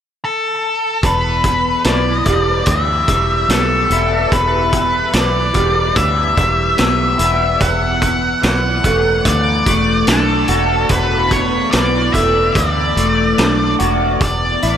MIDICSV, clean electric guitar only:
0, 0, Header, 1, 2, 480
1, 0, Start_track
1, 0, Key_signature, 1, "minor"
1, 0, Tempo, 824176
1, 600, Time_signature, 4, 2, 24, 8
1, 8603, End_track
2, 0, Start_track
2, 0, Title_t, "Clean electric guitar"
2, 0, Program_c, 0, 27
2, 602, Note_on_c, 0, 40, 72
2, 1075, Note_on_c, 0, 52, 67
2, 1317, Note_on_c, 0, 55, 70
2, 1552, Note_off_c, 0, 52, 0
2, 1559, Note_on_c, 0, 52, 70
2, 1792, Note_off_c, 0, 55, 0
2, 1799, Note_off_c, 0, 40, 0
2, 1799, Note_on_c, 0, 55, 66
2, 2042, Note_on_c, 0, 59, 64
2, 2285, Note_on_c, 0, 64, 75
2, 2521, Note_on_c, 0, 40, 72
2, 2756, Note_off_c, 0, 52, 0
2, 2992, Note_on_c, 0, 52, 66
2, 2996, Note_off_c, 0, 55, 0
2, 3223, Note_on_c, 0, 55, 71
2, 3458, Note_off_c, 0, 52, 0
2, 3465, Note_on_c, 0, 52, 65
2, 3479, Note_off_c, 0, 64, 0
2, 3698, Note_off_c, 0, 55, 0
2, 3705, Note_on_c, 0, 55, 67
2, 3717, Note_off_c, 0, 40, 0
2, 3942, Note_off_c, 0, 59, 0
2, 3944, Note_on_c, 0, 59, 71
2, 4181, Note_on_c, 0, 64, 73
2, 4427, Note_off_c, 0, 64, 0
2, 4427, Note_on_c, 0, 40, 73
2, 4429, Note_off_c, 0, 52, 0
2, 4429, Note_off_c, 0, 55, 0
2, 4902, Note_on_c, 0, 52, 68
2, 5148, Note_on_c, 0, 57, 69
2, 5166, Note_off_c, 0, 59, 0
2, 5383, Note_off_c, 0, 52, 0
2, 5390, Note_on_c, 0, 52, 70
2, 5623, Note_off_c, 0, 57, 0
2, 5630, Note_off_c, 0, 40, 0
2, 5630, Note_on_c, 0, 57, 73
2, 5872, Note_on_c, 0, 62, 67
2, 6107, Note_on_c, 0, 66, 76
2, 6349, Note_on_c, 0, 40, 75
2, 6592, Note_off_c, 0, 52, 0
2, 6828, Note_on_c, 0, 52, 66
2, 6832, Note_off_c, 0, 57, 0
2, 7073, Note_off_c, 0, 62, 0
2, 7075, Note_on_c, 0, 57, 65
2, 7301, Note_off_c, 0, 52, 0
2, 7308, Note_on_c, 0, 52, 70
2, 7311, Note_off_c, 0, 66, 0
2, 7545, Note_off_c, 0, 57, 0
2, 7552, Note_off_c, 0, 40, 0
2, 7552, Note_on_c, 0, 57, 66
2, 7796, Note_on_c, 0, 62, 73
2, 8031, Note_on_c, 0, 66, 77
2, 8271, Note_on_c, 0, 40, 67
2, 8273, Note_off_c, 0, 52, 0
2, 8274, Note_off_c, 0, 66, 0
2, 8275, Note_off_c, 0, 57, 0
2, 8277, Note_off_c, 0, 62, 0
2, 8519, Note_on_c, 0, 64, 72
2, 8603, Note_off_c, 0, 40, 0
2, 8603, Note_off_c, 0, 64, 0
2, 8603, End_track
0, 0, End_of_file